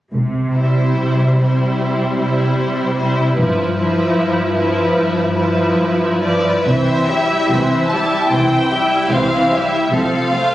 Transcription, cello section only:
0.13 0.88 C3 soft
0.98 1.69 C3 soft
1.79 2.48 C3 soft
2.58 3.27 C3 soft
3.38 4.06 G2 soft
4.16 4.85 G2 soft
4.95 5.69 G2 soft
5.79 6.56 G2 soft
6.66 7.37 C3 soft
7.49 8.18 C3 soft
8.30 8.98 C3 soft
9.10 9.80 C3 soft
9.91 10.55 C3 soft

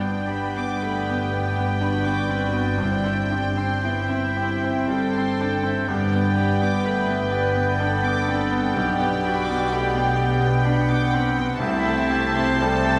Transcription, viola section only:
0.00 0.84 D4 soft
0.85 1.82 G4 soft
1.86 2.81 F#4 soft
2.82 3.32 E4 medium
3.32 3.82 D4 soft
3.83 4.90 E4 medium
4.91 5.90 A4 medium
5.90 6.85 G4 medium
6.85 7.80 B4 medium
7.79 8.75 A4 medium
8.76 9.25 G4 medium
9.24 9.73 F#4 medium
9.71 10.66 G4 medium
11.60 12.58 E4 medium
12.62 12.99 A4 medium

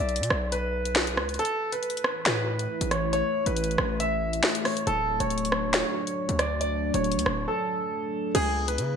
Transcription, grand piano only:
0.00 0.49 D5 medium
0.52 1.35 B4 medium
1.39 1.70 A4 loud
1.72 2.23 B4 medium
2.26 2.87 B4 medium
2.91 3.10 C#5 medium
3.13 3.44 C#5 loud
3.46 3.97 B4 medium
4.00 4.61 E5 medium
4.65 4.84 C#5 medium
4.87 5.18 A4 loud
5.20 5.71 C#5 medium
5.74 6.35 C#5 medium
6.39 6.58 D5 medium
6.61 6.92 D5 medium
6.94 7.45 C#5 medium
7.48 8.31 A4 medium
8.35 8.66 G#4 loud
8.68 8.96 B4 medium

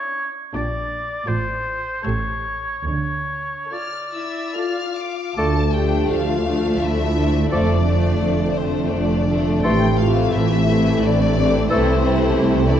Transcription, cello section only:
0.54 1.12 A#2 soft
1.27 1.89 A2 soft
2.05 2.70 A2 soft
2.88 3.56 D3 soft
5.38 6.03 D2 soft
6.11 6.73 D2 soft
6.81 7.43 D2 soft
7.52 8.13 F2 soft
8.21 8.85 F2 soft
8.93 9.56 F2 soft
9.65 10.26 A2 soft
10.34 10.95 A2 soft
11.03 11.62 A2 medium
11.70 12.28 C3 medium
12.36 12.80 C3 medium

